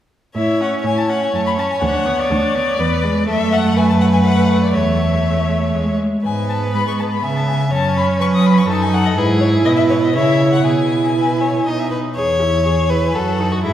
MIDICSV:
0, 0, Header, 1, 5, 480
1, 0, Start_track
1, 0, Key_signature, 3, "major"
1, 0, Tempo, 488202
1, 347, Time_signature, 3, 2, 24, 8
1, 4182, Tempo, 496689
1, 6106, Key_signature, 4, "major"
1, 7062, Tempo, 484653
1, 9462, Tempo, 498339
1, 13386, End_track
2, 0, Start_track
2, 0, Title_t, "Violin"
2, 0, Program_c, 0, 40
2, 345, Note_on_c, 0, 76, 52
2, 573, Note_off_c, 0, 76, 0
2, 605, Note_on_c, 0, 78, 52
2, 684, Note_off_c, 0, 78, 0
2, 844, Note_on_c, 0, 80, 57
2, 960, Note_on_c, 0, 81, 51
2, 975, Note_off_c, 0, 80, 0
2, 1076, Note_on_c, 0, 78, 54
2, 1091, Note_off_c, 0, 81, 0
2, 1209, Note_on_c, 0, 80, 45
2, 1224, Note_off_c, 0, 78, 0
2, 1322, Note_off_c, 0, 80, 0
2, 1328, Note_on_c, 0, 81, 61
2, 1373, Note_off_c, 0, 81, 0
2, 1441, Note_on_c, 0, 83, 57
2, 1487, Note_off_c, 0, 83, 0
2, 1560, Note_on_c, 0, 81, 59
2, 1606, Note_off_c, 0, 81, 0
2, 1680, Note_on_c, 0, 80, 57
2, 1788, Note_off_c, 0, 80, 0
2, 1794, Note_on_c, 0, 78, 64
2, 2155, Note_on_c, 0, 74, 64
2, 2170, Note_off_c, 0, 78, 0
2, 3227, Note_off_c, 0, 74, 0
2, 3233, Note_on_c, 0, 76, 76
2, 3465, Note_on_c, 0, 78, 64
2, 3479, Note_off_c, 0, 76, 0
2, 3714, Note_on_c, 0, 80, 72
2, 3729, Note_off_c, 0, 78, 0
2, 3824, Note_off_c, 0, 80, 0
2, 3830, Note_on_c, 0, 81, 67
2, 3876, Note_off_c, 0, 81, 0
2, 3940, Note_on_c, 0, 78, 64
2, 3989, Note_off_c, 0, 78, 0
2, 4058, Note_on_c, 0, 80, 62
2, 4107, Note_off_c, 0, 80, 0
2, 4173, Note_on_c, 0, 78, 63
2, 4526, Note_off_c, 0, 78, 0
2, 4545, Note_on_c, 0, 74, 54
2, 4656, Note_on_c, 0, 76, 52
2, 4670, Note_off_c, 0, 74, 0
2, 5864, Note_off_c, 0, 76, 0
2, 6107, Note_on_c, 0, 80, 56
2, 6329, Note_off_c, 0, 80, 0
2, 6349, Note_on_c, 0, 81, 47
2, 6426, Note_off_c, 0, 81, 0
2, 6588, Note_on_c, 0, 83, 58
2, 6703, Note_off_c, 0, 83, 0
2, 6715, Note_on_c, 0, 85, 52
2, 6760, Note_off_c, 0, 85, 0
2, 6828, Note_on_c, 0, 81, 53
2, 6875, Note_off_c, 0, 81, 0
2, 6937, Note_on_c, 0, 83, 49
2, 7057, Note_on_c, 0, 80, 56
2, 7072, Note_off_c, 0, 83, 0
2, 7179, Note_off_c, 0, 80, 0
2, 7189, Note_on_c, 0, 81, 54
2, 7236, Note_off_c, 0, 81, 0
2, 7302, Note_on_c, 0, 80, 59
2, 7416, Note_off_c, 0, 80, 0
2, 7422, Note_on_c, 0, 80, 58
2, 7470, Note_off_c, 0, 80, 0
2, 7545, Note_on_c, 0, 81, 64
2, 7780, Note_off_c, 0, 81, 0
2, 7793, Note_on_c, 0, 83, 57
2, 7872, Note_off_c, 0, 83, 0
2, 8031, Note_on_c, 0, 85, 67
2, 8077, Note_off_c, 0, 85, 0
2, 8166, Note_on_c, 0, 87, 61
2, 8280, Note_on_c, 0, 83, 67
2, 8295, Note_off_c, 0, 87, 0
2, 8392, Note_on_c, 0, 85, 61
2, 8407, Note_off_c, 0, 83, 0
2, 8500, Note_off_c, 0, 85, 0
2, 8506, Note_on_c, 0, 81, 75
2, 8633, Note_on_c, 0, 80, 74
2, 8648, Note_off_c, 0, 81, 0
2, 8748, Note_on_c, 0, 78, 74
2, 8763, Note_off_c, 0, 80, 0
2, 8871, Note_on_c, 0, 75, 67
2, 8886, Note_off_c, 0, 78, 0
2, 8979, Note_off_c, 0, 75, 0
2, 8985, Note_on_c, 0, 71, 74
2, 9064, Note_off_c, 0, 71, 0
2, 9210, Note_on_c, 0, 73, 64
2, 9289, Note_off_c, 0, 73, 0
2, 9459, Note_on_c, 0, 75, 70
2, 9506, Note_off_c, 0, 75, 0
2, 9565, Note_on_c, 0, 76, 62
2, 9615, Note_off_c, 0, 76, 0
2, 9691, Note_on_c, 0, 73, 64
2, 9739, Note_off_c, 0, 73, 0
2, 9825, Note_on_c, 0, 75, 57
2, 9936, Note_on_c, 0, 76, 69
2, 9951, Note_off_c, 0, 75, 0
2, 10295, Note_off_c, 0, 76, 0
2, 10301, Note_on_c, 0, 78, 54
2, 10409, Note_on_c, 0, 80, 60
2, 10423, Note_off_c, 0, 78, 0
2, 11632, Note_off_c, 0, 80, 0
2, 12347, Note_on_c, 0, 80, 40
2, 12828, Note_on_c, 0, 78, 40
2, 12842, Note_off_c, 0, 80, 0
2, 13298, Note_off_c, 0, 78, 0
2, 13304, Note_on_c, 0, 76, 43
2, 13386, Note_off_c, 0, 76, 0
2, 13386, End_track
3, 0, Start_track
3, 0, Title_t, "Violin"
3, 0, Program_c, 1, 40
3, 347, Note_on_c, 1, 73, 47
3, 800, Note_off_c, 1, 73, 0
3, 833, Note_on_c, 1, 73, 50
3, 2749, Note_on_c, 1, 71, 53
3, 2764, Note_off_c, 1, 73, 0
3, 3218, Note_off_c, 1, 71, 0
3, 3224, Note_on_c, 1, 69, 55
3, 3703, Note_on_c, 1, 71, 60
3, 3718, Note_off_c, 1, 69, 0
3, 4651, Note_off_c, 1, 71, 0
3, 4657, Note_on_c, 1, 73, 48
3, 5840, Note_off_c, 1, 73, 0
3, 6112, Note_on_c, 1, 71, 47
3, 7025, Note_off_c, 1, 71, 0
3, 7061, Note_on_c, 1, 76, 46
3, 7539, Note_on_c, 1, 73, 50
3, 7554, Note_off_c, 1, 76, 0
3, 8017, Note_on_c, 1, 71, 50
3, 8032, Note_off_c, 1, 73, 0
3, 8482, Note_off_c, 1, 71, 0
3, 8488, Note_on_c, 1, 69, 56
3, 8986, Note_on_c, 1, 68, 59
3, 9001, Note_off_c, 1, 69, 0
3, 9455, Note_on_c, 1, 71, 61
3, 9470, Note_off_c, 1, 68, 0
3, 9933, Note_off_c, 1, 71, 0
3, 9939, Note_on_c, 1, 73, 53
3, 10407, Note_off_c, 1, 73, 0
3, 10413, Note_on_c, 1, 68, 38
3, 10847, Note_off_c, 1, 68, 0
3, 10907, Note_on_c, 1, 71, 39
3, 11152, Note_on_c, 1, 73, 37
3, 11167, Note_off_c, 1, 71, 0
3, 11388, Note_off_c, 1, 73, 0
3, 11394, Note_on_c, 1, 75, 39
3, 11519, Note_on_c, 1, 76, 37
3, 11533, Note_off_c, 1, 75, 0
3, 11625, Note_off_c, 1, 76, 0
3, 11631, Note_on_c, 1, 71, 39
3, 11708, Note_off_c, 1, 71, 0
3, 11871, Note_on_c, 1, 73, 57
3, 12585, Note_on_c, 1, 71, 53
3, 12600, Note_off_c, 1, 73, 0
3, 12823, Note_on_c, 1, 69, 52
3, 12838, Note_off_c, 1, 71, 0
3, 13183, Note_on_c, 1, 66, 45
3, 13197, Note_off_c, 1, 69, 0
3, 13285, Note_off_c, 1, 66, 0
3, 13290, Note_on_c, 1, 64, 55
3, 13386, Note_off_c, 1, 64, 0
3, 13386, End_track
4, 0, Start_track
4, 0, Title_t, "Viola"
4, 0, Program_c, 2, 41
4, 353, Note_on_c, 2, 64, 37
4, 598, Note_on_c, 2, 61, 33
4, 613, Note_off_c, 2, 64, 0
4, 828, Note_on_c, 2, 64, 38
4, 842, Note_off_c, 2, 61, 0
4, 1074, Note_on_c, 2, 61, 36
4, 1089, Note_off_c, 2, 64, 0
4, 1309, Note_off_c, 2, 61, 0
4, 1315, Note_on_c, 2, 57, 37
4, 1554, Note_on_c, 2, 61, 35
4, 1568, Note_off_c, 2, 57, 0
4, 1787, Note_off_c, 2, 61, 0
4, 1793, Note_on_c, 2, 62, 40
4, 2029, Note_on_c, 2, 59, 40
4, 2044, Note_off_c, 2, 62, 0
4, 2272, Note_on_c, 2, 62, 44
4, 2287, Note_off_c, 2, 59, 0
4, 2506, Note_on_c, 2, 59, 41
4, 2521, Note_off_c, 2, 62, 0
4, 2739, Note_off_c, 2, 59, 0
4, 2745, Note_on_c, 2, 59, 47
4, 2988, Note_on_c, 2, 56, 46
4, 3002, Note_off_c, 2, 59, 0
4, 3223, Note_off_c, 2, 56, 0
4, 3229, Note_on_c, 2, 57, 53
4, 4143, Note_off_c, 2, 57, 0
4, 4180, Note_on_c, 2, 57, 49
4, 4647, Note_off_c, 2, 57, 0
4, 4660, Note_on_c, 2, 57, 43
4, 5622, Note_on_c, 2, 56, 38
4, 5637, Note_off_c, 2, 57, 0
4, 5910, Note_off_c, 2, 56, 0
4, 6107, Note_on_c, 2, 59, 43
4, 7504, Note_off_c, 2, 59, 0
4, 7545, Note_on_c, 2, 61, 44
4, 8484, Note_off_c, 2, 61, 0
4, 8504, Note_on_c, 2, 63, 53
4, 8971, Note_off_c, 2, 63, 0
4, 8982, Note_on_c, 2, 64, 58
4, 9898, Note_off_c, 2, 64, 0
4, 9928, Note_on_c, 2, 64, 52
4, 10406, Note_off_c, 2, 64, 0
4, 10418, Note_on_c, 2, 64, 40
4, 11398, Note_on_c, 2, 63, 33
4, 11412, Note_off_c, 2, 64, 0
4, 11685, Note_off_c, 2, 63, 0
4, 11871, Note_on_c, 2, 68, 35
4, 12113, Note_on_c, 2, 64, 31
4, 12127, Note_off_c, 2, 68, 0
4, 12347, Note_on_c, 2, 68, 35
4, 12361, Note_off_c, 2, 64, 0
4, 12585, Note_on_c, 2, 64, 33
4, 12600, Note_off_c, 2, 68, 0
4, 12825, Note_off_c, 2, 64, 0
4, 12832, Note_on_c, 2, 66, 34
4, 13065, Note_on_c, 2, 63, 33
4, 13080, Note_off_c, 2, 66, 0
4, 13294, Note_off_c, 2, 63, 0
4, 13300, Note_on_c, 2, 68, 37
4, 13386, Note_off_c, 2, 68, 0
4, 13386, End_track
5, 0, Start_track
5, 0, Title_t, "Cello"
5, 0, Program_c, 3, 42
5, 343, Note_on_c, 3, 45, 48
5, 752, Note_off_c, 3, 45, 0
5, 827, Note_on_c, 3, 45, 47
5, 1232, Note_off_c, 3, 45, 0
5, 1311, Note_on_c, 3, 42, 48
5, 1714, Note_off_c, 3, 42, 0
5, 1790, Note_on_c, 3, 38, 57
5, 2193, Note_off_c, 3, 38, 0
5, 2265, Note_on_c, 3, 38, 57
5, 2669, Note_off_c, 3, 38, 0
5, 2744, Note_on_c, 3, 40, 65
5, 3145, Note_off_c, 3, 40, 0
5, 3227, Note_on_c, 3, 42, 55
5, 4619, Note_off_c, 3, 42, 0
5, 4663, Note_on_c, 3, 40, 44
5, 5606, Note_off_c, 3, 40, 0
5, 5622, Note_on_c, 3, 40, 40
5, 5699, Note_off_c, 3, 40, 0
5, 6110, Note_on_c, 3, 44, 41
5, 6590, Note_on_c, 3, 56, 42
5, 6604, Note_off_c, 3, 44, 0
5, 7063, Note_off_c, 3, 56, 0
5, 7068, Note_on_c, 3, 49, 44
5, 7537, Note_off_c, 3, 49, 0
5, 7552, Note_on_c, 3, 42, 50
5, 8019, Note_off_c, 3, 42, 0
5, 8033, Note_on_c, 3, 54, 53
5, 8497, Note_off_c, 3, 54, 0
5, 8505, Note_on_c, 3, 42, 58
5, 8968, Note_off_c, 3, 42, 0
5, 8974, Note_on_c, 3, 44, 57
5, 9424, Note_off_c, 3, 44, 0
5, 9462, Note_on_c, 3, 47, 52
5, 9932, Note_on_c, 3, 49, 54
5, 9947, Note_off_c, 3, 47, 0
5, 10410, Note_off_c, 3, 49, 0
5, 10416, Note_on_c, 3, 47, 41
5, 11373, Note_off_c, 3, 47, 0
5, 11397, Note_on_c, 3, 47, 33
5, 11679, Note_off_c, 3, 47, 0
5, 11879, Note_on_c, 3, 40, 40
5, 12788, Note_off_c, 3, 40, 0
5, 12824, Note_on_c, 3, 42, 41
5, 13297, Note_on_c, 3, 44, 41
5, 13311, Note_off_c, 3, 42, 0
5, 13386, Note_off_c, 3, 44, 0
5, 13386, End_track
0, 0, End_of_file